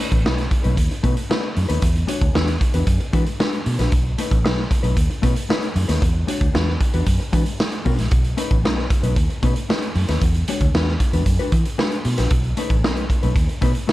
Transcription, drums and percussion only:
0.12 kick medium
0.12 closed hi-hat medium
0.26 snare loud
0.38 snare soft
0.38 closed hi-hat soft
0.51 kick loud
0.51 closed hi-hat medium
0.64 closed hi-hat medium
0.77 kick medium
0.77 closed hi-hat medium
0.91 closed hi-hat soft
1.04 kick loud
1.04 closed hi-hat medium
1.17 closed hi-hat soft
1.31 snare loud
1.56 open hi-hat medium
1.70 closed hi-hat medium
1.82 kick loud
1.82 closed hi-hat loud
1.95 closed hi-hat soft
2.08 closed hi-hat medium
2.21 kick loud
2.21 closed hi-hat medium
2.35 snare loud
2.48 snare soft
2.48 closed hi-hat soft
2.61 kick loud
2.61 closed hi-hat medium
2.74 closed hi-hat medium
2.87 kick medium
2.87 closed hi-hat medium
3.00 closed hi-hat soft
3.13 kick loud
3.13 closed hi-hat medium
3.26 closed hi-hat medium
3.40 snare loud
3.52 closed hi-hat soft
3.66 open hi-hat medium
3.79 snare soft
3.79 closed hi-hat medium
3.92 kick loud
3.92 closed hi-hat medium
4.18 closed hi-hat medium
4.31 kick medium
4.31 closed hi-hat medium
4.46 snare loud
4.59 snare soft
4.71 kick loud
4.71 closed hi-hat medium
4.84 closed hi-hat medium
4.97 kick medium
4.97 closed hi-hat medium
5.10 closed hi-hat soft
5.23 kick medium
5.23 closed hi-hat medium
5.36 closed hi-hat medium
5.50 snare loud
5.62 closed hi-hat soft
5.76 open hi-hat medium
5.89 snare soft
5.89 closed hi-hat medium
6.02 kick loud
6.02 closed hi-hat medium
6.28 closed hi-hat medium
6.41 kick medium
6.41 closed hi-hat medium
6.55 snare loud
6.68 snare soft
6.81 kick loud
6.81 closed hi-hat medium
6.94 closed hi-hat medium
7.06 kick medium
7.06 closed hi-hat medium
7.20 closed hi-hat soft
7.33 kick medium
7.33 closed hi-hat medium
7.46 closed hi-hat medium
7.60 snare loud
7.72 closed hi-hat soft
7.85 kick medium
7.85 open hi-hat medium
7.99 snare soft
7.99 closed hi-hat medium
8.11 kick loud
8.11 closed hi-hat medium
8.24 closed hi-hat soft
8.38 closed hi-hat medium
8.51 kick medium
8.51 closed hi-hat medium
8.65 snare loud
8.78 snare soft
8.90 kick loud
8.90 closed hi-hat medium
9.03 closed hi-hat medium
9.16 kick medium
9.16 closed hi-hat medium
9.30 closed hi-hat soft
9.43 kick medium
9.43 closed hi-hat medium
9.56 closed hi-hat soft
9.70 snare loud
9.82 closed hi-hat soft
9.95 open hi-hat medium
10.09 snare soft
10.09 closed hi-hat medium
10.21 kick loud
10.21 closed hi-hat medium
10.34 closed hi-hat soft
10.48 closed hi-hat medium
10.61 kick medium
10.61 closed hi-hat medium
10.75 snare loud
10.88 snare soft
11.00 kick loud
11.00 closed hi-hat medium
11.13 closed hi-hat medium
11.26 kick medium
11.26 closed hi-hat medium
11.39 closed hi-hat soft
11.52 kick loud
11.52 closed hi-hat medium
11.65 closed hi-hat medium
11.79 snare loud
11.92 closed hi-hat soft
12.05 open hi-hat medium
12.18 snare soft
12.18 closed hi-hat medium
12.31 kick loud
12.31 closed hi-hat medium
12.44 closed hi-hat soft
12.57 closed hi-hat medium
12.70 kick medium
12.70 closed hi-hat medium
12.84 snare loud
12.97 closed hi-hat soft
13.10 kick loud
13.10 closed hi-hat medium
13.23 closed hi-hat medium
13.36 kick medium
13.36 closed hi-hat medium
13.49 closed hi-hat soft
13.62 kick loud
13.62 closed hi-hat medium
13.75 closed hi-hat soft
13.89 snare loud

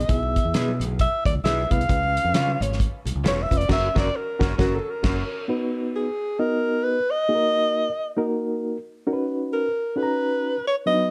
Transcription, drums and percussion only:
0.00 closed hi-hat soft
0.09 kick loud
0.09 closed hi-hat loud
0.09 muted conga soft
0.09 low conga medium
0.23 muted conga soft
0.36 kick medium
0.36 closed hi-hat medium
0.54 snare loud
0.54 closed hi-hat loud
0.68 muted conga soft
0.68 high conga medium
0.81 closed hi-hat medium
0.81 low conga medium
0.99 kick loud
0.99 closed hi-hat medium
1.25 kick medium
1.25 closed hi-hat medium
1.25 high conga medium
1.45 snare loud
1.45 closed hi-hat medium
1.45 high conga medium
1.71 kick medium
1.71 closed hi-hat medium
1.71 low conga medium
1.81 closed hi-hat soft
1.89 kick loud
1.89 closed hi-hat medium
1.89 low conga medium
2.03 muted conga soft
2.17 closed hi-hat medium
2.34 snare loud
2.34 closed hi-hat loud
2.47 high conga medium
2.61 closed hi-hat medium
2.61 low conga medium
2.72 snare soft
2.79 kick medium
2.79 closed hi-hat medium
2.79 muted conga soft
3.05 closed hi-hat medium
3.05 high conga medium
3.24 snare loud
3.24 closed hi-hat medium
3.24 muted conga soft
3.24 high conga medium
3.38 muted conga soft
3.51 kick medium
3.51 closed hi-hat medium
3.51 low conga medium
3.61 closed hi-hat soft
3.69 kick medium
3.69 snare medium
3.69 crash medium
3.96 kick loud
3.96 snare loud
4.41 kick loud
4.41 snare loud
4.59 kick loud
4.59 snare loud
5.04 kick loud
5.04 snare loud
5.04 crash medium

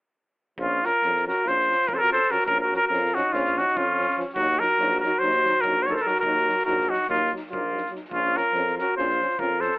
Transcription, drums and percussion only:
0.58 kick medium
0.83 snare soft
1.02 snare soft
1.15 snare soft
1.28 snare soft
1.46 snare soft
1.60 snare soft
1.71 snare soft
1.82 snare soft
1.89 kick medium
2.12 snare soft
2.21 snare soft
2.30 snare soft
2.39 snare soft
2.48 kick loud
2.73 snare soft
2.92 snare soft
3.05 snare soft
3.15 snare soft
3.33 snare soft
3.44 snare soft
3.58 snare soft
3.67 snare soft
3.77 kick medium
4.00 snare soft
4.10 snare soft
4.20 snare soft
4.29 snare soft
4.36 kick medium
4.61 snare soft
4.80 snare soft
4.90 snare soft
5.03 snare soft
5.21 snare soft
5.31 snare soft
5.45 snare soft
5.54 snare soft
5.64 kick medium
5.86 snare soft
5.96 snare soft
6.07 snare soft
6.15 snare soft
6.23 kick medium
6.37 snare soft
6.49 snare soft
6.58 snare soft
6.67 snare soft
6.80 snare soft
6.93 snare soft
7.03 snare soft
7.10 kick medium
7.10 snare soft
7.25 snare soft
7.36 snare soft
7.46 snare soft
7.53 kick medium
7.77 snare soft
7.86 snare soft
7.95 snare soft
8.04 snare soft
8.11 kick medium
8.37 snare soft
8.54 snare soft
8.67 snare soft
8.78 snare soft
8.98 snare soft
9.09 snare soft
9.20 snare soft
9.29 snare soft
9.39 kick medium
9.61 snare soft
9.71 snare soft

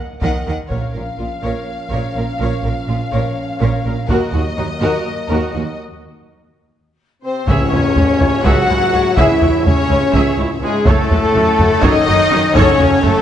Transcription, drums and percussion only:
0.22 taiko medium
0.70 taiko soft
4.09 taiko medium
7.47 taiko medium
7.47 tam-tam medium
7.72 taiko low soft
7.96 taiko low medium
8.21 taiko low medium
8.45 taiko medium
9.17 taiko medium
9.41 taiko low soft
9.66 taiko low medium
9.90 taiko low medium
10.14 taiko medium
10.86 taiko loud
11.11 taiko low medium
11.35 taiko low medium
11.59 taiko low medium
11.83 taiko medium
12.55 taiko loud
12.79 taiko low medium
13.04 taiko low medium

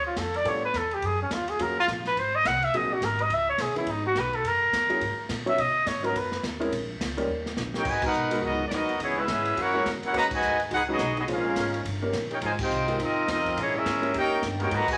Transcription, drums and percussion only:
0.16 kick soft
0.16 snare medium
0.16 hi-hat pedal medium
0.16 ride medium
0.34 ride medium
0.45 kick soft
0.45 ride medium
0.74 kick soft
0.74 snare medium
0.74 hi-hat pedal medium
0.74 ride medium
0.91 ride soft
1.02 kick soft
1.02 ride medium
1.31 kick soft
1.31 snare medium
1.31 hi-hat pedal medium
1.31 ride medium
1.48 ride medium
1.59 kick soft
1.59 ride medium
1.88 kick soft
1.88 snare medium
1.88 hi-hat pedal medium
1.88 ride medium
2.05 snare soft
2.05 ride soft
2.16 kick soft
2.16 ride medium
2.45 kick soft
2.45 snare medium
2.45 hi-hat pedal medium
2.45 ride medium
2.62 ride medium
2.73 kick soft
2.73 ride medium
3.01 kick soft
3.01 snare medium
3.01 hi-hat pedal medium
3.01 ride medium
3.19 ride soft
3.30 kick soft
3.30 ride medium
3.58 kick soft
3.58 snare medium
3.58 hi-hat pedal medium
3.58 ride medium
3.76 ride medium
3.87 kick soft
3.87 ride medium
4.15 kick soft
4.15 snare medium
4.15 hi-hat pedal medium
4.15 ride medium
4.33 ride soft
4.44 kick soft
4.44 ride medium
4.72 kick soft
4.72 snare medium
4.72 hi-hat pedal medium
4.72 ride loud
4.90 ride medium
5.01 kick soft
5.01 ride medium
5.29 kick soft
5.29 snare medium
5.29 hi-hat pedal medium
5.29 ride medium
5.47 ride soft
5.58 kick soft
5.58 ride medium
5.86 kick soft
5.86 snare loud
5.86 hi-hat pedal medium
5.86 ride medium
6.04 ride medium
6.15 kick soft
6.15 ride medium
6.32 snare medium
6.43 kick soft
6.43 snare medium
6.43 hi-hat pedal medium
6.43 ride medium
6.61 ride medium
6.72 kick soft
6.72 ride medium
7.00 kick soft
7.00 snare loud
7.00 hi-hat pedal medium
7.00 ride medium
7.18 ride medium
7.46 snare medium
7.57 snare medium
7.57 hi-hat pedal medium
7.74 snare medium
7.85 kick medium
7.85 crash loud
8.02 kick medium
8.02 crash medium
8.13 hi-hat pedal medium
8.31 ride medium
8.42 kick soft
8.71 kick soft
8.71 snare medium
8.71 hi-hat pedal medium
8.71 ride medium
8.89 ride soft
9.00 kick soft
9.00 ride medium
9.28 kick soft
9.28 snare medium
9.28 hi-hat pedal medium
9.28 ride medium
9.45 ride medium
9.57 kick soft
9.57 ride medium
9.85 kick soft
9.85 snare medium
9.85 hi-hat pedal soft
9.85 ride medium
10.03 ride medium
10.14 kick soft
10.14 ride medium
10.31 kick loud
10.31 crash medium
10.42 hi-hat pedal medium
10.59 ride medium
10.71 kick soft
10.71 ride medium
10.99 kick soft
10.99 snare medium
10.99 hi-hat pedal medium
10.99 ride medium
11.17 ride soft
11.28 kick soft
11.28 ride medium
11.56 kick soft
11.56 snare medium
11.56 hi-hat pedal medium
11.56 ride medium
11.74 ride medium
11.85 kick soft
11.85 ride medium
12.13 kick soft
12.13 snare medium
12.13 hi-hat pedal medium
12.13 ride medium
12.31 ride soft
12.41 kick soft
12.41 ride medium
12.59 kick loud
12.59 crash loud
12.71 hi-hat pedal medium
12.88 ride medium
12.99 kick soft
12.99 ride medium
13.28 kick soft
13.28 snare medium
13.28 hi-hat pedal medium
13.28 ride medium
13.45 kick soft
13.45 ride soft
13.57 kick soft
13.57 ride medium
13.85 kick soft
13.85 snare medium
13.85 hi-hat pedal medium
13.85 ride medium
14.03 ride medium
14.14 kick soft
14.14 ride medium
14.42 kick soft
14.42 snare medium
14.42 hi-hat pedal medium
14.42 ride medium
14.60 ride soft
14.71 kick soft
14.71 ride medium
14.88 kick medium
14.88 crash loud

